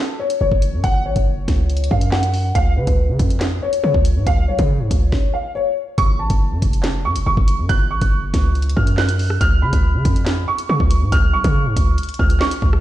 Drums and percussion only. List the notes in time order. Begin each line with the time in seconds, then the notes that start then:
0.30 closed hi-hat
0.52 kick
0.62 closed hi-hat
0.84 kick, closed hi-hat
1.16 kick, closed hi-hat
1.48 kick, snare, closed hi-hat
1.70 closed hi-hat
1.77 closed hi-hat
1.84 closed hi-hat
1.91 kick
2.01 closed hi-hat
2.12 snare, clap
2.23 closed hi-hat
2.34 open hi-hat
2.55 kick, closed hi-hat
2.87 kick, closed hi-hat
3.19 kick, closed hi-hat
3.30 closed hi-hat
3.41 snare, clap, closed hi-hat
3.73 closed hi-hat
3.94 kick
4.05 closed hi-hat
4.27 kick, closed hi-hat
4.59 kick, closed hi-hat
4.91 kick, closed hi-hat
5.12 kick, snare
5.98 kick, closed hi-hat
6.30 kick, closed hi-hat
6.62 kick, closed hi-hat
6.73 closed hi-hat
6.84 snare, clap, closed hi-hat
7.16 closed hi-hat
7.37 kick
7.48 closed hi-hat
7.69 kick, closed hi-hat
8.01 kick, closed hi-hat
8.34 kick, snare, closed hi-hat
8.55 closed hi-hat
8.62 closed hi-hat
8.69 closed hi-hat
8.77 kick
8.87 closed hi-hat
8.98 snare, clap
9.09 closed hi-hat
9.19 open hi-hat
9.30 cross-stick
9.41 kick, closed hi-hat
9.73 kick, closed hi-hat
10.05 kick, closed hi-hat
10.16 closed hi-hat
10.26 snare, clap, closed hi-hat
10.58 closed hi-hat
10.80 kick
10.91 closed hi-hat
11.12 kick, closed hi-hat
11.44 kick, closed hi-hat
11.77 kick, closed hi-hat
11.98 closed hi-hat
12.03 closed hi-hat
12.09 closed hi-hat
12.14 closed hi-hat
12.20 kick
12.30 closed hi-hat
12.41 snare, clap
12.51 closed hi-hat
12.62 kick
12.73 cross-stick